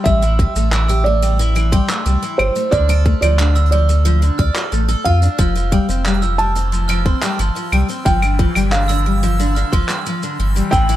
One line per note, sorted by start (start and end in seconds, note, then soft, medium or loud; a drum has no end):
0.04 0.47 A1 loud
0.04 0.21 G3 loud
0.04 1.01 E5 loud
0.04 0.15 E6 medium
0.04 kick loud
0.04 shaker medium
0.22 0.38 E3 medium
0.22 closed hi-hat soft
0.22 shaker medium
0.39 0.54 G3 medium
0.39 kick loud
0.55 1.81 A1 medium
0.55 0.71 A3 medium
0.55 shaker medium
0.72 0.88 E3 medium
0.72 0.87 E6 medium
0.72 clap medium
0.72 shaker medium
0.88 1.04 G4 medium
0.88 1.05 E6 loud
0.88 closed hi-hat medium
0.88 shaker medium
1.04 1.21 A3 medium
1.04 2.01 D5 loud
1.22 1.37 G3 loud
1.22 closed hi-hat medium
1.22 shaker medium
1.39 1.54 E3 loud
1.39 shaker medium
1.55 1.71 E3 medium
1.55 closed hi-hat medium
1.55 claves medium
1.55 shaker medium
1.72 1.88 G3 loud
1.72 1.88 C6 medium
1.72 kick loud
1.88 2.04 A3 medium
1.88 2.05 E6 medium
1.88 clap medium
1.88 closed hi-hat medium
1.88 shaker medium
2.06 2.17 C2 medium
2.06 2.21 G3 medium
2.06 shaker medium
2.22 2.38 E3 medium
2.22 closed hi-hat soft
2.22 shaker soft
2.38 2.51 G1 medium
2.38 2.54 G3 medium
2.38 2.70 C5 medium
2.38 claves medium
2.55 2.71 A3 medium
2.55 closed hi-hat medium
2.55 shaker medium
2.71 3.14 D2 medium
2.71 2.87 D3 medium
2.71 3.18 D5 loud
2.71 2.82 F6 medium
2.71 kick loud
2.71 shaker medium
2.89 3.04 A4 loud
2.89 closed hi-hat medium
2.89 claves medium
2.89 shaker medium
3.06 3.21 A3 medium
3.06 kick loud
3.21 4.31 D2 medium
3.21 3.37 F3 loud
3.21 3.69 D5 loud
3.21 closed hi-hat medium
3.21 claves medium
3.21 shaker medium
3.38 3.54 D3 loud
3.38 3.55 F6 medium
3.38 clap medium
3.38 shaker medium
3.55 3.71 D3 medium
3.55 3.71 E6 loud
3.55 closed hi-hat medium
3.55 shaker soft
3.66 closed hi-hat soft
3.71 3.87 F3 loud
3.71 4.68 D5 medium
3.77 closed hi-hat soft
3.89 4.04 A3 medium
3.89 closed hi-hat medium
3.89 shaker medium
4.05 4.20 F3 loud
4.05 shaker medium
4.22 4.38 D3 medium
4.22 closed hi-hat medium
4.22 shaker soft
4.38 4.50 D2 medium
4.38 4.54 D5 loud
4.38 4.54 F6 medium
4.38 kick loud
4.55 4.71 A4 medium
4.55 4.65 F6 medium
4.55 clap medium
4.55 closed hi-hat medium
4.55 shaker medium
4.72 4.95 A1 medium
4.72 4.87 A3 medium
4.72 shaker medium
4.88 5.04 A4 loud
4.88 4.98 E6 medium
4.88 closed hi-hat soft
4.88 shaker medium
5.04 5.29 F2 loud
5.04 5.21 F4 loud
5.04 6.43 F5 medium
5.04 5.22 F6 medium
5.04 kick medium
5.22 5.37 D4 medium
5.22 closed hi-hat medium
5.22 shaker medium
5.38 5.81 F1 loud
5.38 10.96 E3 medium
5.38 5.54 F3 loud
5.38 10.96 E6 medium
5.38 5.48 F6 medium
5.38 kick loud
5.38 shaker medium
5.55 5.71 F3 medium
5.55 closed hi-hat soft
5.55 shaker medium
5.72 5.87 G3 loud
5.72 kick loud
5.88 7.14 F1 medium
5.88 6.04 C4 medium
5.88 closed hi-hat medium
5.88 shaker medium
6.05 6.21 G3 loud
6.05 6.21 F6 medium
6.05 clap medium
6.05 shaker medium
6.13 closed hi-hat medium
6.22 6.38 F3 medium
6.22 6.38 E6 loud
6.22 shaker soft
6.38 6.54 G3 medium
6.38 8.01 A5 loud
6.55 6.71 C4 medium
6.55 closed hi-hat medium
6.55 shaker medium
6.72 6.87 F3 medium
6.72 shaker medium
6.88 7.04 F3 loud
6.88 6.98 F6 loud
6.88 closed hi-hat medium
6.88 claves medium
6.88 shaker soft
7.06 7.21 C4 medium
7.06 7.22 C6 medium
7.06 kick loud
7.22 7.37 G3 loud
7.22 7.38 F6 medium
7.22 clap medium
7.22 closed hi-hat medium
7.22 shaker medium
7.39 7.51 G1 medium
7.39 7.54 F3 loud
7.39 shaker medium
7.55 7.71 F3 medium
7.55 closed hi-hat soft
7.55 shaker soft
7.72 7.84 C2 medium
7.72 7.88 G3 medium
7.72 claves medium
7.88 8.04 C4 medium
7.88 closed hi-hat medium
7.88 shaker medium
8.05 8.48 G1 loud
8.05 8.21 F3 loud
8.05 8.68 G5 loud
8.05 8.15 F6 medium
8.05 kick loud
8.05 shaker medium
8.22 8.38 D3 medium
8.22 closed hi-hat soft
8.22 claves medium
8.22 shaker medium
8.39 8.54 F3 medium
8.39 kick loud
8.55 9.64 G1 medium
8.55 8.71 G3 medium
8.55 closed hi-hat medium
8.55 claves medium
8.55 shaker medium
8.72 8.88 D3 medium
8.72 9.68 F5 medium
8.72 8.88 F6 medium
8.72 clap medium
8.72 shaker medium
8.88 9.04 D3 loud
8.88 9.04 E6 loud
8.88 closed hi-hat medium
8.88 shaker soft
9.06 9.21 G3 medium
9.23 9.38 F3 loud
9.23 closed hi-hat medium
9.23 shaker medium
9.39 9.54 D3 loud
9.39 shaker medium
9.55 9.71 D3 medium
9.55 9.65 F6 loud
9.55 closed hi-hat medium
9.55 shaker soft
9.72 9.84 G1 medium
9.72 9.88 F3 loud
9.72 9.88 C6 medium
9.72 kick loud
9.89 10.04 G3 medium
9.89 10.05 F6 medium
9.89 clap medium
9.89 closed hi-hat medium
9.89 shaker medium
10.06 10.21 F3 medium
10.06 shaker medium
10.23 10.39 D3 medium
10.23 closed hi-hat soft
10.23 shaker soft
10.39 10.62 G1 loud
10.39 10.54 F3 medium
10.55 10.71 G3 medium
10.55 closed hi-hat medium
10.55 shaker medium
10.71 10.96 A1 loud
10.71 10.88 E3 medium
10.71 10.96 G5 loud
10.71 10.82 E6 medium
10.71 kick loud
10.71 shaker medium
10.89 10.96 E3 loud
10.89 closed hi-hat medium
10.89 shaker medium